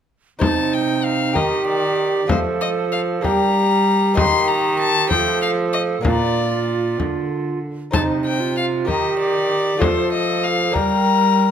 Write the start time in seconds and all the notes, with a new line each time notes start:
0.39 C3 D#4 C5 A5, frame drum
0.73 G5
1.04 F5
1.33 D#3 G4 A#4 D#5, frame drum
1.67 D5
2.27 F3 A3 F4 A4 C5, frame drum
2.61 D#5
2.92 F5
3.21 G3 A#3 D4 G4 A#5, frame drum
4.14 D#3 A#3 D#4 G4 C6, frame drum
4.48 A#5
4.79 A5
5.08 F3 A3 C4 F4 A4 G5, frame drum
5.42 F5
5.73 D#5
6.01 A#2 A#3 D4 F4, frame drum
6.05 A#2 F4 D5
7.00 D3, frame drum
7.91 C3 D#4 C5 A5, frame drum
8.26 G5
8.40 F4
8.57 F5
8.85 D#3 G4 A#4 D#5, frame drum
9.19 D5
9.77 F3 A3 F4 A4 C5
9.81 frame drum
10.12 D#5
10.44 F5
10.72 G3 A#3 D4 G4 A#4 A#5, frame drum